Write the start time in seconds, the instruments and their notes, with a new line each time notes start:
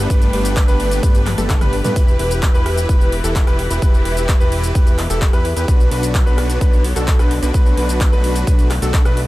Already playing: string section G3 D4 B4
0.10 analog synth bass G1, supersaw synth A3 B3 D4 G4 B4, string section G4, grand piano B4, kick, closed hi-hat, cabasa
0.22 closed hi-hat, cabasa
0.33 analog synth bass G1, supersaw synth A3 B3 D4 G4 B4, grand piano B4, open hi-hat
0.45 closed hi-hat, cabasa
0.57 kick, clap, closed hi-hat, cabasa
0.68 analog synth bass G1, supersaw synth A3 B3 D4 G4 B4, grand piano B4, closed hi-hat, cabasa
0.80 open hi-hat
0.91 closed hi-hat, cabasa
1.03 analog synth bass G1, supersaw synth A3 B3 D4 G4 B4, grand piano B4, kick, closed hi-hat, cabasa
1.15 closed hi-hat, cabasa
1.26 cross-stick, clap, open hi-hat, high tom
1.38 analog synth bass G1, supersaw synth A3 B3 D4 G4 A4, grand piano A4, closed hi-hat, high tom, cabasa
1.50 kick, clap, closed hi-hat, mid tom, cabasa
1.61 analog synth bass G1, supersaw synth A3 B3 D4 G4 B4, grand piano B4, cross-stick, closed hi-hat, mid tom, cabasa
1.73 open hi-hat
1.84 analog synth bass G2, supersaw synth A3 B3 D4 G4 B4, grand piano B4, closed hi-hat, mid tom, cabasa
1.96 analog synth bass E1, string section E3 E4, supersaw synth E4 G4 B4, grand piano B4, kick, closed hi-hat, cabasa
2.08 cabasa
2.19 analog synth bass E1, supersaw synth E4 G4 B4, grand piano B4, open hi-hat
2.31 closed hi-hat, cabasa
2.43 kick, clap, closed hi-hat, cabasa
2.54 analog synth bass E1, supersaw synth E4 G4 B4, grand piano B4, cabasa
2.66 cross-stick, open hi-hat
2.78 closed hi-hat, cabasa
2.89 analog synth bass E1, supersaw synth E4 G4 B4, grand piano B4, kick, closed hi-hat, cabasa
3.01 cabasa
3.12 open hi-hat
3.24 analog synth bass E1, supersaw synth E4 G4 A4, grand piano A4, closed hi-hat, cabasa
3.36 kick, clap, closed hi-hat, cabasa
3.47 analog synth bass E1, supersaw synth E4 G4 B4, grand piano B4, cross-stick, closed hi-hat, cabasa
3.59 open hi-hat
3.70 analog synth bass E1, supersaw synth E4 G4 B4, grand piano B4, closed hi-hat, cabasa
3.82 analog synth bass E1, supersaw synth E4 G4 B4, grand piano B4, kick, closed hi-hat, cabasa
3.94 cabasa
4.05 analog synth bass E1, supersaw synth E4 G4 B4, grand piano B4, open hi-hat
4.17 closed hi-hat, cabasa
4.29 kick, clap, closed hi-hat, cabasa
4.40 analog synth bass E1, supersaw synth E4 G4 B4, grand piano B4, cabasa
4.52 open hi-hat
4.64 closed hi-hat, cabasa
4.75 analog synth bass E1, supersaw synth E4 G4 B4, grand piano B4, kick, closed hi-hat, cabasa
4.87 closed hi-hat, cabasa
4.98 cross-stick, clap, open hi-hat
5.10 analog synth bass E1, supersaw synth E4 G4 A4, grand piano A4, closed hi-hat, cabasa
5.22 kick, clap, closed hi-hat, cabasa
5.33 analog synth bass E2, supersaw synth E4 G4 B4, grand piano B4, cross-stick, closed hi-hat, cabasa
5.45 open hi-hat
5.57 analog synth bass E2, supersaw synth E4 G4 B4, grand piano B4, closed hi-hat, cabasa
5.68 analog synth bass B1, string section D3 F#3 B3, supersaw synth D4 F#4 B4, grand piano B4, kick, closed hi-hat, cabasa
5.80 cabasa
5.91 analog synth bass B1, supersaw synth D4 F#4 B4, grand piano B4, open hi-hat
6.03 closed hi-hat, cabasa
6.15 kick, clap, closed hi-hat, cabasa
6.26 analog synth bass B1, supersaw synth D4 F#4 B4, grand piano B4, cabasa
6.38 cross-stick, open hi-hat
6.50 closed hi-hat, cabasa
6.61 analog synth bass B1, supersaw synth D4 F#4 B4, grand piano B4, kick, closed hi-hat, cabasa
6.73 cabasa
6.84 open hi-hat
6.96 analog synth bass B1, supersaw synth D4 F#4 A4, grand piano A4, closed hi-hat, cabasa
7.08 kick, clap, closed hi-hat, cabasa
7.19 analog synth bass B1, supersaw synth D4 F#4 B4, grand piano B4, cross-stick, closed hi-hat, cabasa
7.31 open hi-hat
7.43 analog synth bass B1, supersaw synth D4 F#4 B4, grand piano B4, closed hi-hat, cabasa
7.54 analog synth bass B1, string section A3, supersaw synth D4 F#4 B4, grand piano B4, kick, closed hi-hat, cabasa
7.66 cabasa
7.77 analog synth bass B1, supersaw synth D4 F#4 B4, grand piano B4, open hi-hat
7.89 closed hi-hat, cabasa
8.01 kick, clap, closed hi-hat, cabasa
8.12 analog synth bass B1, supersaw synth D4 F#4 B4, grand piano B4, cabasa
8.24 open hi-hat
8.36 closed hi-hat, cabasa
8.47 analog synth bass B1, supersaw synth D4 F#4 B4, grand piano B4, kick, closed hi-hat, cabasa
8.59 closed hi-hat, cabasa
8.71 cross-stick, clap, open hi-hat
8.82 analog synth bass B1, supersaw synth D4 F#4 A4, grand piano A4, closed hi-hat, cabasa
8.94 kick, clap, closed hi-hat, cabasa
9.05 analog synth bass B1, supersaw synth D4 F#4 B4, grand piano B4, cross-stick, closed hi-hat, cabasa
9.17 open hi-hat